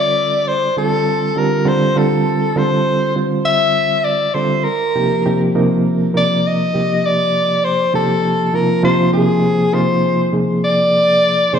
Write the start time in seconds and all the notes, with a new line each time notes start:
Already playing: D3 G3 C4 F4 A4 D5
0.48 C5
0.76 D3 G3 C4 F4 A4
1.35 D3 G3 C4 F4 G4 A#4
1.65 D3 G3 C4 F4 A4 C5
1.96 D3 G3 C4 F4 A4
2.56 D3 G3 C4 F4 A4 C5
3.16 D3 G3 C4 F4 C5
3.46 E5
4.04 D5
4.34 D3 G3 C4 F4 A4 C5
4.64 A#4
4.95 C3 F3 A#3 D#4 G4
5.25 C3 F3 A#3 D#4 G4
5.55 C3 F3 A#3 D#4 A#4
6.14 C3 F3 A#3 D#4 A#4 D5
6.47 D#5
6.74 C3 F3 A#3 D#4 G4
7.06 D5
7.64 C5
7.94 C3 F3 A#3 D#4 G4 A4
8.53 C3 F3 A#3 D#4 F4 A#4
8.83 C3 F3 A#3 D#4 F4 C5
9.13 C3 F3 A#3 D#4 G#4
9.73 C3 F3 A#3 D#4 F4 C5
10.32 C3 F3 A#3 D#4 G#4
10.64 D5
11.53 C3 F3 A#3 D#4 G#4 C5